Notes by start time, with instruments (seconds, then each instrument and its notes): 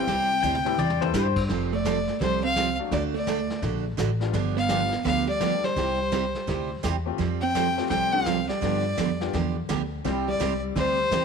Already playing: hollow-body jazz guitar C4, fiddle G5
0.07 upright bass C2, steel-string acoustic guitar C3 G3 C4 E4 G4, brush sweep, kick, snare
0.43 upright bass D2, steel-string acoustic guitar C3 G3 C4 E4 G4, pedal steel guitar G5, hi-hat pedal
0.55 mid tom
0.65 upright piano E3 G3 C4 E4 G4, mid tom
0.78 upright bass E2, steel-string acoustic guitar C3 G3 C4 E4 G4, pedal steel guitar D5, mid tom
0.90 mid tom
1.00 upright piano E3 G3 C4 E4 A4, pedal steel guitar C5, floor tom
1.13 upright bass G2, steel-string acoustic guitar C3 G3 C4 E4 G4, pedal steel guitar C5, snare, hi-hat pedal
1.36 kick, crash
1.49 upright bass F1, steel-string acoustic guitar F3 G3 C4 F4 A4, brush sweep, kick, snare
1.73 hollow-body jazz guitar A3, fiddle D5
1.85 steel-string acoustic guitar F3 G3 C4 F4 A4, kick, snare, hi-hat pedal
2.07 snare
2.21 upright bass C2, steel-string acoustic guitar F3 G3 C4 F4 A4, hollow-body jazz guitar G3, fiddle C5, brush sweep, kick, snare
2.44 hollow-body jazz guitar C4, fiddle F5
2.56 steel-string acoustic guitar F3 G3 C4 F4 A4, kick, snare, hi-hat pedal
2.78 upright piano F#3 A3 D4 F#4
2.91 upright bass D2, steel-string acoustic guitar D3 A3 D4 F#4 A4, hollow-body jazz guitar A3, fiddle D5, brush sweep, kick, snare
3.14 hollow-body jazz guitar A3, fiddle D5
3.27 steel-string acoustic guitar D3 A3 D4 F#4 A4, kick, snare, hi-hat pedal
3.50 snare
3.62 upright bass A#1, steel-string acoustic guitar D3 A3 D4 F#4 A4, brush sweep, kick, snare
3.97 upright bass A1, steel-string acoustic guitar D3 A3 D4 F#4 A4, kick, snare, hi-hat pedal
4.20 upright piano G3 B3 D4 F4, snare
4.33 upright bass G1, steel-string acoustic guitar D3 F3 B3 D4 G4, brush sweep, kick, snare
4.57 hollow-body jazz guitar B3, fiddle F5
4.68 steel-string acoustic guitar D3 F3 B3 D4 G4, upright piano G3 B3 D4 F4, kick, snare, hi-hat pedal
4.91 snare
5.05 upright bass D2, steel-string acoustic guitar D3 F3 B3 D4 G4, hollow-body jazz guitar B3, fiddle F5, brush sweep, kick, snare
5.27 hollow-body jazz guitar G3, fiddle D5
5.40 steel-string acoustic guitar D3 F3 B3 D4 G4, upright piano G3 B3 D4 G4, kick, snare, hi-hat pedal
5.64 hollow-body jazz guitar G3, fiddle C5, snare
5.76 upright bass C2, steel-string acoustic guitar C3 G3 C4 E4 G4, brush sweep, kick, snare
6.12 steel-string acoustic guitar C3 G3 C4 E4 G4, kick, snare, hi-hat pedal
6.35 snare
6.47 upright bass D2, steel-string acoustic guitar C3 G3 C4 E4 G4, brush sweep, kick, snare
6.83 upright bass E2, steel-string acoustic guitar C3 G3 C4 E4 G4, kick, snare, hi-hat pedal
7.06 upright piano A3 C4 F4 G4
7.18 upright bass F2, steel-string acoustic guitar F3 G3 C4 F4 A4, brush sweep, kick, snare
7.41 hollow-body jazz guitar C4, fiddle G5
7.55 steel-string acoustic guitar F3 G3 C4 F4 A4, kick, snare, hi-hat pedal
7.77 upright piano A3 C4 F4 G4, snare
7.89 upright bass C2, steel-string acoustic guitar F3 G3 C4 F4 A4, hollow-body jazz guitar C4, fiddle G5, brush sweep, kick, snare
8.13 upright piano A3 C4 F4 G4, hollow-body jazz guitar C4, fiddle F5
8.26 steel-string acoustic guitar F3 G3 C4 F4 A4, kick, snare, hi-hat pedal
8.49 hollow-body jazz guitar G3, fiddle D5, snare
8.61 upright bass G2, steel-string acoustic guitar D3 F3 B3 D4 G4, upright piano B3 D4 F4 G4, brush sweep, kick, snare
8.97 upright bass F2, steel-string acoustic guitar D3 F3 B3 D4 G4, kick, snare, hi-hat pedal
9.20 upright piano B3 D4 F4 G4, snare
9.33 upright bass E2, steel-string acoustic guitar D3 F3 B3 D4 G4, brush sweep, kick, snare
9.69 upright bass D2, steel-string acoustic guitar D3 F3 B3 D4 G4, kick, snare, hi-hat pedal
10.04 upright bass C2, steel-string acoustic guitar C3 G3 C4 E4 G4, upright piano G3 C4 E4 G4, brush sweep, kick, snare
10.28 hollow-body jazz guitar G3, fiddle D5
10.40 upright bass C2, steel-string acoustic guitar C3 G3 C4 E4 G4, kick, snare, hi-hat pedal
10.75 upright bass D2, steel-string acoustic guitar C3 G3 C4 E4 G4, hollow-body jazz guitar G3, fiddle C5, brush sweep, kick, snare
11.11 upright bass E2, steel-string acoustic guitar C3 G3 C4 E4 G4, kick, snare, hi-hat pedal